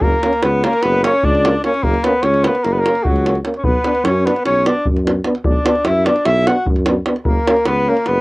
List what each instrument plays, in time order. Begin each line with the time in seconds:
0.01 tuba F#1, alto saxophone A#3, trumpet A#4, davul low
0.23 euphonium A#3, french horn C#4, davul high
0.33 davul high
0.42 tuba C#2, alto saxophone B3, trumpet B4, davul high
0.63 alto saxophone A#3, euphonium A#3, french horn C#4, trumpet A#4, davul high
0.73 davul high
0.82 tuba F#1, alto saxophone B3, trumpet B4, davul high
1.03 euphonium A#3, alto saxophone C#4, french horn C#4, trumpet C#5, davul high
1.23 tuba C#2, alto saxophone D4, trumpet D5, davul low
1.35 davul high
1.45 euphonium A#3, french horn C#4, davul high
1.64 euphonium A#3, alto saxophone C#4, french horn C#4, trumpet C#5, davul high
1.74 davul high
1.83 tuba F#1, alto saxophone A#3, trumpet A#4, davul low
1.94 davul high
2.04 euphonium A#3, alto saxophone B3, french horn C#4, trumpet B4, davul high
2.23 tuba C#2, alto saxophone C#4, trumpet C#5, davul high
2.34 davul high
2.44 euphonium A#3, alto saxophone B3, french horn C#4, trumpet B4, davul high
2.55 davul high
2.63 tuba F#1, alto saxophone A#3, trumpet A#4, davul high
2.73 alto saxophone B3, trumpet B4
2.79 alto saxophone A#3, trumpet A#4
2.86 euphonium A#3, french horn C#4, davul high
2.95 davul high
3.03 tuba C#2, alto saxophone F#3, trumpet F#4, davul low
3.16 davul high
3.26 euphonium A#3, french horn C#4, davul high
3.35 davul high
3.44 euphonium A#3, french horn C#4, davul high
3.54 trumpet C#5, davul high
3.58 alto saxophone C#4
3.64 tuba B1, alto saxophone B3, trumpet B4, davul low
3.85 euphonium B3, french horn D4, davul high
3.95 davul high
4.04 tuba F#2, alto saxophone C#4, trumpet C#5, davul high
4.25 euphonium B3, alto saxophone B3, french horn D4, trumpet B4, davul high
4.36 davul high
4.45 tuba B1, alto saxophone C#4, trumpet C#5, davul high
4.66 euphonium B3, alto saxophone D4, french horn D4, trumpet D5, davul high
4.86 tuba F#2, davul low
4.97 davul high
5.05 euphonium B3, french horn D4, davul high
5.24 euphonium B3, french horn D4, davul high
5.35 davul high
5.44 tuba B1, alto saxophone D4, trumpet D5, davul low
5.65 euphonium B3, french horn D4, davul high
5.75 davul high
5.85 tuba F#2, alto saxophone E4, trumpet E5, davul high
6.06 euphonium B3, alto saxophone D4, french horn D4, trumpet D5, davul high
6.16 davul high
6.25 tuba B1, alto saxophone E4, trumpet E5, davul high
6.47 euphonium B3, french horn D4, alto saxophone F#4, trumpet F#5, davul high
6.66 tuba F#2, davul low
6.76 davul high
6.86 euphonium B3, french horn D4, davul high
7.06 euphonium B3, french horn D4, davul high
7.16 davul high
7.25 tuba F#1, alto saxophone A#3, trumpet A#4, davul low
7.48 euphonium A#3, french horn C#4, davul high
7.57 davul high
7.66 tuba C#2, alto saxophone B3, trumpet B4, davul high
7.88 euphonium A#3, alto saxophone A#3, french horn C#4, trumpet A#4
7.97 davul high
8.06 tuba F#1, alto saxophone B3, trumpet B4, davul high